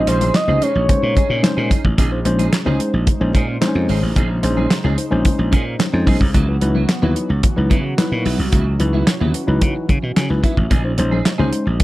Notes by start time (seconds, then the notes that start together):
Already playing: C3 C#3 G#3 C#4 D#4 C5
0.07 A#1 C#4 D#4 G#4 C5, closed hi-hat
0.20 C#4 D#4 G#4, closed hi-hat, high conga
0.34 D#5, muted clean electric guitar stroke, snare, clap, closed hi-hat, muted conga, high conga
0.48 C#2 G#3 C#4 D#4 G#4 C5, low conga
0.61 C#4 D#4 G#4 C#5, closed hi-hat, muted conga
0.75 A#1, muted clean electric guitar stroke
0.88 G#3 C#4 D#4 C5, muted clean electric guitar stroke, kick, closed hi-hat, high conga, low conga
1.03 A#2, muted clean electric guitar stroke
1.15 C#4 D#4 G#4, kick, closed hi-hat, high conga
1.30 A#2 C#4 D#4 G#4
1.43 G#3 C#4 D#4 C5, muted clean electric guitar stroke, snare, clap, closed hi-hat, high conga
1.57 A#2 C#4 D#4 G#4
1.70 C#4 D#4 G#4, kick, closed hi-hat, high conga
1.84 A1, muted clean electric guitar stroke, kick
1.98 A#1 C#3 G#3 C#4 D#4 G#4 C5, kick, closed hi-hat, muted conga, low conga
2.11 D#4 C5, muted clean electric guitar stroke
2.25 A#1 G#3 C#4 D#4 C5, muted clean electric guitar stroke, closed hi-hat, muted conga
2.39 C#4 D#4 G#4, closed hi-hat, high conga
2.52 muted clean electric guitar stroke, snare, clap, closed hi-hat, muted conga, high conga
2.65 C#2 G#3 C#4 D#4 G#4 C5, low conga
2.79 muted clean electric guitar stroke, closed hi-hat, muted conga
2.94 A#1, muted clean electric guitar stroke
3.07 kick, closed hi-hat, muted conga, high conga, low conga
3.20 A#1 G#3 C#4 D#4 C5, muted clean electric guitar stroke
3.33 A#2 C#4 D#4 G#4, kick, closed hi-hat, high conga
3.48 muted clean electric guitar stroke
3.61 G#3 C4 D#4 C5, muted clean electric guitar stroke, snare, clap, closed hi-hat, muted conga, high conga
3.68 C#4
3.75 F2, muted clean electric guitar stroke
3.88 G#1 C#4 D#4 G#4, open hi-hat, high conga
4.03 A1, muted clean electric guitar stroke
4.16 A#1 C#4 D#4 G#4, kick, closed hi-hat, muted conga, low conga
4.30 muted clean electric guitar stroke
4.43 A#1 G#3 C#4 D#4 C5, muted clean electric guitar stroke, closed hi-hat, muted conga
4.57 C#4 D#4 G#4, high conga
4.70 muted clean electric guitar stroke, snare, clap, closed hi-hat, high conga
4.84 C#2 C#4 D#4 G#4, low conga
4.97 D#4 C5, muted clean electric guitar stroke, closed hi-hat
5.11 A#1 G#3 C#4 D#4 C5, muted clean electric guitar stroke
5.25 kick, closed hi-hat, muted conga, high conga, low conga
5.39 A#1, muted clean electric guitar stroke
5.52 A#2 C#4 D#4 G#4, kick, closed hi-hat, high conga
5.66 muted clean electric guitar stroke
5.79 snare, clap, closed hi-hat, muted conga, high conga
5.93 F2 G#3 C#4 D#4 C5, muted clean electric guitar stroke
6.06 B1 C#4 D#4 G#4, kick, open hi-hat, muted conga, high conga
6.20 C2, muted clean electric guitar stroke, kick
6.34 C#2 E3 F#3 B3 E4 F#4, kick, closed hi-hat, low conga
6.48 E4 B4, muted clean electric guitar stroke
6.61 C#2 F#3 D#4 E4 B4, muted clean electric guitar stroke, closed hi-hat, muted conga
6.75 F#3 B3 E4, high conga
6.89 muted clean electric guitar stroke, snare, clap, closed hi-hat, high conga
7.02 D#2 F#3 B3 D#4 E4 B4, low conga
7.16 muted clean electric guitar stroke, closed hi-hat, muted conga
7.29 C#2, muted clean electric guitar stroke
7.43 kick, closed hi-hat, muted conga, high conga, low conga
7.56 C#2 F#3 D#4 E4 B4, muted clean electric guitar stroke
7.70 C#3 F#3 B3 E4, kick, closed hi-hat, muted conga, high conga
7.84 muted clean electric guitar stroke
7.98 F#3 D#4 E4 B4, muted clean electric guitar stroke, snare, clap, closed hi-hat, high conga
8.12 A#2, muted clean electric guitar stroke
8.25 B1 F#3 B3 E4, open hi-hat, muted conga, high conga
8.39 C2, muted clean electric guitar stroke
8.52 C#2 F#3 B3 C#4 E4, kick, closed hi-hat, low conga
8.66 muted clean electric guitar stroke
8.79 C#2 F#3 D#4 E4 B4, muted clean electric guitar stroke, closed hi-hat, muted conga
8.93 F#3 B3 E4, high conga
9.07 muted clean electric guitar stroke, snare, clap, closed hi-hat, muted conga, high conga
9.21 D#2 F#3 B3 E4, low conga
9.34 E4 B4, muted clean electric guitar stroke, closed hi-hat, muted conga
9.47 C#2 F#3 D#4 E4 B4, muted clean electric guitar stroke
9.62 C#3, muted clean electric guitar stroke, kick, closed hi-hat, muted conga, high conga, low conga
9.75 muted clean electric guitar stroke
9.89 C#3, kick, closed hi-hat, muted conga, high conga
10.03 B2, muted clean electric guitar stroke
10.16 C#3 G#5, snare, clap, closed hi-hat, high conga
10.30 C#2 F#3 D#4 E4 B4, muted clean electric guitar stroke
10.43 F#3 B3 E4 E5, kick, closed hi-hat, high conga
10.56 A1, muted clean electric guitar stroke, kick
10.70 A#1 C#3 G#3 C#4 D#4 G#4 C5, kick, closed hi-hat, muted conga, low conga
10.84 D#4 C5, muted clean electric guitar stroke
10.98 A#1 G#3 C#4 D#4 C5, muted clean electric guitar stroke, closed hi-hat
11.11 C#4 D#4 G#4, high conga
11.25 muted clean electric guitar stroke, snare, clap, closed hi-hat, muted conga, high conga
11.38 C#2 G#3 C#4 D#4 G#4 C5, low conga
11.52 muted clean electric guitar stroke, closed hi-hat
11.66 A#1, muted clean electric guitar stroke
11.80 kick, closed hi-hat, muted conga, high conga, low conga